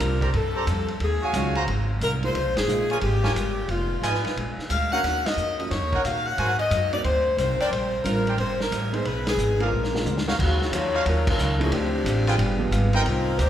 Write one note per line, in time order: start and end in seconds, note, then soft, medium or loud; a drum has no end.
0.00 0.32 C2 medium
0.00 0.22 A#2 medium
0.00 0.19 G3 soft
0.00 0.22 G3 medium
0.00 0.19 C4 soft
0.00 0.23 C4 medium
0.00 0.19 D4 soft
0.00 0.23 D4 medium
0.00 0.19 F4 medium
0.00 0.19 A#4 medium
0.00 hi-hat pedal soft
0.00 ride medium
0.21 0.29 G4 medium
0.21 0.33 A#4 medium
0.21 0.29 C5 medium
0.21 0.29 D5 medium
0.21 0.30 A#5 medium
0.21 kick soft
0.21 ride soft
0.32 0.66 G2 medium
0.32 0.55 A#2 soft
0.32 0.56 G3 soft
0.32 0.56 C4 soft
0.32 0.57 D4 medium
0.32 0.98 A4 medium
0.32 ride soft
0.54 0.63 G4 medium
0.54 0.63 C5 medium
0.54 0.63 D5 medium
0.54 0.63 A#5 medium
0.66 0.99 F2 medium
0.66 0.89 A#2 medium
0.66 0.90 G3 medium
0.66 0.90 C4 medium
0.66 0.90 D4 medium
0.66 hi-hat pedal soft
0.66 ride medium
0.88 ride soft
1.00 1.33 D#2 medium
1.00 1.23 D#3 soft
1.00 1.24 G#3 soft
1.00 1.24 C#4 soft
1.00 1.24 F#4 soft
1.00 1.57 G#4 medium
1.00 ride soft
1.22 1.54 F#4 medium
1.22 1.54 C#5 medium
1.22 1.54 F5 medium
1.22 1.54 G#5 medium
1.33 1.66 C#2 medium
1.33 1.57 D#3 soft
1.33 1.53 F#3 medium
1.33 1.53 G#3 soft
1.33 1.57 G#3 medium
1.33 1.54 C#4 soft
1.33 1.57 C#4 medium
1.33 1.54 F4 medium
1.33 1.58 F#4 medium
1.33 hi-hat pedal medium
1.33 ride medium
1.55 1.64 F#4 medium
1.55 1.64 C5 medium
1.55 1.64 F5 medium
1.55 1.64 A#5 medium
1.55 ride soft
1.67 2.00 G#1 medium
1.67 1.90 G#2 soft
1.67 1.90 F#3 soft
1.67 1.91 C4 medium
1.67 1.92 F4 medium
1.67 ride medium
1.99 2.34 C2 medium
1.99 2.23 G#2 medium
1.99 2.24 F#3 medium
1.99 2.24 C4 medium
1.99 2.24 F4 medium
1.99 2.12 A#4 medium
1.99 hi-hat pedal medium
1.99 ride soft
2.22 2.33 G#3 medium
2.22 2.34 A#3 soft
2.22 2.34 D#4 medium
2.22 2.34 F4 medium
2.22 2.55 C5 medium
2.22 ride soft
2.34 2.46 C#2 medium
2.34 2.57 C#3 soft
2.34 2.58 G#3 soft
2.34 2.58 A#3 soft
2.34 2.59 F4 soft
2.34 ride medium
2.46 2.56 A#1 soft
2.57 2.67 G#1 medium
2.57 2.88 G#4 medium
2.57 snare medium
2.57 ride medium
2.66 3.01 A#1 medium
2.66 2.91 C#3 medium
2.66 2.87 G#3 medium
2.66 2.91 G#3 medium
2.66 2.87 A#3 soft
2.66 2.92 A#3 medium
2.66 2.87 D#4 soft
2.66 2.88 F4 medium
2.66 2.92 F4 medium
2.66 hi-hat pedal medium
2.90 2.98 F4 medium
2.90 2.97 G#4 medium
2.90 2.98 A#4 medium
2.90 2.98 C#5 medium
2.90 2.98 G#5 medium
2.90 ride soft
3.01 3.34 G#1 medium
3.01 3.24 C#3 soft
3.01 3.25 G#3 soft
3.01 3.26 A#3 soft
3.01 3.26 F4 soft
3.01 3.65 G4 medium
3.01 ride medium
3.23 3.31 F4 medium
3.23 3.31 A#4 medium
3.23 3.31 C#5 medium
3.23 3.32 G#5 medium
3.23 snare soft
3.34 3.67 G1 medium
3.34 3.59 C#3 medium
3.34 3.59 G#3 medium
3.34 3.59 A#3 medium
3.34 3.60 F4 medium
3.34 hi-hat pedal soft
3.34 ride medium
3.68 4.01 F1 medium
3.68 3.92 F3 soft
3.68 3.92 B3 soft
3.68 3.93 D#4 soft
3.68 4.21 F4 medium
3.68 3.93 G#4 soft
3.68 ride soft
4.02 4.22 G#1 medium
4.02 4.25 F3 medium
4.02 4.26 B3 medium
4.02 4.26 D#4 medium
4.02 4.36 F4 medium
4.02 4.26 G#4 medium
4.02 4.36 B4 medium
4.02 4.36 D#5 medium
4.02 4.36 G#5 medium
4.02 hi-hat pedal medium
4.02 ride medium
4.14 snare soft
4.24 muted upright bass stroke soft
4.24 snare soft
4.24 ride soft
4.36 4.56 A#1 medium
4.36 4.59 A#2 soft
4.36 4.60 G#3 medium
4.36 4.60 D4 soft
4.36 4.60 F#4 soft
4.36 ride medium
4.58 muted upright bass stroke soft
4.58 snare soft
4.70 5.02 D2 medium
4.70 4.93 A#2 medium
4.70 4.93 G#3 medium
4.70 4.93 D4 medium
4.70 4.94 F#4 medium
4.70 4.90 F5 medium
4.70 hi-hat pedal medium
4.70 ride medium
4.91 5.34 A#3 soft
4.91 5.35 C#4 soft
4.91 5.35 D4 soft
4.91 5.00 D#4 medium
4.91 5.35 F#4 medium
4.91 5.00 A#4 medium
4.91 5.00 C#5 medium
4.91 5.00 F5 medium
4.91 5.23 F#5 medium
5.03 5.36 D#2 medium
5.03 5.26 D#3 soft
5.03 5.27 A#3 soft
5.03 5.27 C#4 soft
5.03 5.28 F#4 soft
5.03 snare soft
5.03 ride medium
5.26 5.57 D#5 medium
5.26 snare medium
5.26 ride medium
5.36 5.69 F2 medium
5.36 5.60 D#3 medium
5.36 5.60 A#3 soft
5.36 5.61 C#4 medium
5.36 5.61 F#4 medium
5.36 hi-hat pedal soft
5.58 5.69 A#3 soft
5.58 5.69 C#4 soft
5.58 5.69 F4 soft
5.58 5.70 F#4 medium
5.58 5.70 D#5 medium
5.58 ride soft
5.70 5.82 F#2 medium
5.70 5.93 D#3 soft
5.70 5.94 A#3 soft
5.70 5.94 C#4 soft
5.70 5.95 F#4 soft
5.70 6.02 C#5 medium
5.70 snare soft
5.70 ride medium
5.82 5.93 D#2 soft
5.92 6.03 C#2 medium
5.92 6.01 D#4 medium
5.92 6.01 A#4 medium
5.92 6.01 C#5 medium
5.92 6.01 F#5 medium
5.92 kick soft
5.92 ride soft
6.03 6.37 A#2 medium
6.03 6.26 D#3 medium
6.03 6.27 A#3 medium
6.03 6.27 C#4 medium
6.03 6.28 F#4 medium
6.03 6.26 F5 medium
6.03 hi-hat pedal soft
6.03 ride medium
6.26 6.59 F#5 medium
6.36 6.60 G#2 soft
6.36 6.70 G#2 medium
6.36 6.60 F#3 soft
6.36 6.61 A#3 soft
6.36 6.61 C4 soft
6.36 6.52 F#4 medium
6.36 6.52 A#4 medium
6.36 6.53 C5 medium
6.36 6.53 G#5 medium
6.36 ride medium
6.59 6.90 D#5 medium
6.59 ride soft
6.69 7.03 F#2 medium
6.69 6.93 G#2 medium
6.69 6.93 F#3 medium
6.69 6.94 A#3 medium
6.69 6.94 C4 medium
6.69 hi-hat pedal soft
6.69 ride medium
6.92 7.03 A#3 soft
6.92 7.03 C4 soft
6.92 7.04 D#4 soft
6.92 7.04 F#4 medium
6.92 6.98 D5 medium
6.92 ride soft
7.03 7.36 D2 medium
7.03 7.26 G#2 soft
7.03 7.27 F#3 soft
7.03 7.27 A#3 soft
7.03 7.28 C4 soft
7.03 7.36 C5 medium
7.03 ride soft
7.37 7.58 C2 medium
7.37 7.60 G#2 medium
7.37 7.61 F#3 medium
7.37 7.61 A#3 medium
7.37 7.61 C4 medium
7.37 7.58 C5 medium
7.37 hi-hat pedal soft
7.37 ride soft
7.59 7.68 D4 medium
7.59 7.68 A#4 medium
7.59 7.68 C5 medium
7.59 7.71 D5 medium
7.59 7.68 G5 medium
7.59 muted upright bass stroke soft
7.59 ride soft
7.69 8.03 A#1 medium
7.69 7.93 A#2 soft
7.69 7.94 G3 soft
7.69 7.95 C4 soft
7.69 7.95 D4 soft
7.69 8.05 C5 medium
7.69 ride medium
8.03 8.37 A1 medium
8.03 8.27 A#2 soft
8.03 8.24 G3 soft
8.03 8.28 G3 medium
8.03 8.24 C4 soft
8.03 8.28 C4 medium
8.03 8.24 D4 soft
8.03 8.28 D4 medium
8.03 8.25 F4 medium
8.03 8.36 A#4 medium
8.03 hi-hat pedal medium
8.03 ride medium
8.27 8.35 D4 medium
8.27 8.35 A#4 medium
8.27 8.35 C5 medium
8.27 8.35 G5 medium
8.27 ride soft
8.37 8.70 G1 medium
8.37 8.61 A#2 soft
8.37 8.61 G3 soft
8.37 8.62 C4 soft
8.37 8.62 D4 soft
8.37 8.59 C5 medium
8.37 ride soft
8.60 8.92 A#4 medium
8.60 snare medium
8.70 9.04 A1 medium
8.70 8.94 A#2 medium
8.70 8.94 G3 medium
8.70 8.94 C4 medium
8.70 8.95 D4 medium
8.70 hi-hat pedal medium
8.70 ride medium
8.92 9.04 G#3 medium
8.92 9.04 B3 medium
8.92 9.04 D#4 medium
8.92 9.04 G#4 medium
8.92 9.05 C5 medium
8.92 ride soft
9.03 9.37 B1 medium
9.03 9.27 F3 soft
9.03 9.27 B3 soft
9.03 9.28 D#4 soft
9.03 9.28 G#4 soft
9.03 ride soft
9.07 9.28 B4 medium
9.27 9.59 G#4 medium
9.27 snare medium
9.27 ride medium
9.37 9.70 G#1 medium
9.37 9.60 F3 medium
9.37 9.61 B3 medium
9.37 9.61 D#4 medium
9.37 9.61 G#4 medium
9.37 hi-hat pedal soft
9.59 9.70 G#3 medium
9.59 9.71 C4 medium
9.59 9.71 D4 soft
9.59 9.68 D4 medium
9.59 9.71 F4 medium
9.59 9.68 G#4 medium
9.59 9.68 A#4 medium
9.59 10.28 A#4 medium
9.59 9.68 F5 medium
9.59 ride soft
9.71 10.04 A#1 medium
9.71 9.94 A#2 soft
9.71 9.95 F3 soft
9.71 9.95 G#3 soft
9.71 9.96 D4 soft
9.84 snare soft
9.93 10.04 G#3 soft
9.93 10.04 C4 soft
9.93 10.04 D4 soft
9.93 10.05 F4 medium
9.93 snare medium
10.05 10.38 D2 medium
10.05 10.28 A#2 medium
10.05 10.28 F3 medium
10.05 10.29 G#3 medium
10.05 10.29 D4 medium
10.05 hi-hat pedal medium
10.05 high tom soft
10.17 snare medium
10.27 10.35 D#4 medium
10.27 10.35 F#4 medium
10.27 10.35 C#5 medium
10.27 10.35 F5 medium
10.27 snare medium
10.38 10.71 D#2 medium
10.38 10.61 D#3 soft
10.38 10.62 F#3 soft
10.38 10.62 C#4 soft
10.38 10.63 F4 medium
10.38 kick medium
10.38 crash medium
10.42 10.72 C#3 medium
10.42 10.72 A#3 medium
10.42 10.72 F4 medium
10.42 10.72 F#4 medium
10.61 snare soft
10.71 11.04 E2 medium
10.71 10.94 D#3 medium
10.71 10.95 F#3 medium
10.71 11.07 A#3 medium
10.71 10.95 C#4 medium
10.71 10.96 F4 medium
10.71 11.06 F4 medium
10.71 11.07 F#4 medium
10.71 11.07 C#5 medium
10.71 hi-hat pedal medium
10.71 ride medium
10.94 11.02 D#4 medium
10.94 11.02 F#4 medium
10.94 11.02 C#5 medium
10.94 11.02 F5 medium
11.06 11.38 D#2 medium
11.06 11.28 D#3 soft
11.06 11.29 F#3 soft
11.06 11.28 F#3 medium
11.06 11.28 C#4 medium
11.06 11.30 C#4 soft
11.06 11.28 F4 medium
11.06 11.30 F4 medium
11.06 11.28 A#4 medium
11.06 ride medium
11.27 11.60 F#3 medium
11.27 11.59 C#4 medium
11.27 11.60 F4 medium
11.27 11.59 A#4 medium
11.27 kick medium
11.27 crash medium
11.38 11.70 C#2 medium
11.38 11.61 D#3 medium
11.38 11.62 F#3 medium
11.38 11.62 C#4 medium
11.38 11.63 F4 medium
11.38 hi-hat pedal medium
11.58 11.70 F3 medium
11.58 11.70 A3 medium
11.58 11.70 C4 medium
11.58 11.70 D4 medium
11.58 11.71 E4 medium
11.58 ride soft
11.62 11.71 F3 medium
11.62 11.73 A#3 medium
11.62 11.73 C#4 medium
11.62 11.73 G#4 medium
11.71 12.04 D2 medium
11.71 11.95 D3 soft
11.71 12.72 F3 medium
11.71 11.95 A3 soft
11.71 12.39 C4 medium
11.71 11.96 C4 soft
11.71 12.72 D4 medium
11.71 11.96 F4 medium
11.71 12.72 G4 medium
11.71 ride medium
12.04 12.37 A1 medium
12.04 12.28 D3 medium
12.04 12.28 A3 medium
12.04 12.29 C4 medium
12.04 12.29 F4 medium
12.04 hi-hat pedal soft
12.04 ride medium
12.27 12.35 F4 medium
12.27 12.35 G#4 medium
12.27 12.35 B4 medium
12.27 12.35 G5 medium
12.27 ride soft
12.38 12.70 G1 medium
12.38 12.61 G3 medium
12.38 12.62 B3 medium
12.38 12.62 F4 medium
12.38 12.63 G#4 medium
12.38 ride medium
12.58 13.02 F3 medium
12.58 13.02 G#3 soft
12.58 13.03 B3 medium
12.58 13.03 D4 medium
12.58 13.03 G4 medium
12.71 13.04 G#1 medium
12.71 12.94 G3 medium
12.71 12.94 B3 medium
12.71 12.95 F4 medium
12.71 12.95 G#4 medium
12.71 hi-hat pedal soft
12.71 ride medium
12.93 13.02 D#4 medium
12.93 13.02 A#4 medium
12.93 13.02 C5 medium
12.93 13.02 G5 medium
12.93 ride soft
13.02 13.37 C2 medium
13.02 13.27 C3 soft
13.02 13.28 G3 soft
13.02 13.39 C4 medium
13.02 13.05 D#4 medium
13.02 13.39 F4 loud
13.02 ride medium
13.06 13.37 A#3 medium
13.06 13.28 A#3 soft
13.06 13.38 D#4 medium
13.06 13.29 D#4 soft
13.37 13.49 D2 medium
13.37 13.49 C3 medium
13.37 13.49 G3 medium
13.37 13.49 A#3 medium
13.37 13.49 D#4 loud
13.37 13.49 D#4 medium
13.37 13.49 G4 medium
13.37 13.49 C5 loud
13.37 hi-hat pedal medium
13.37 ride medium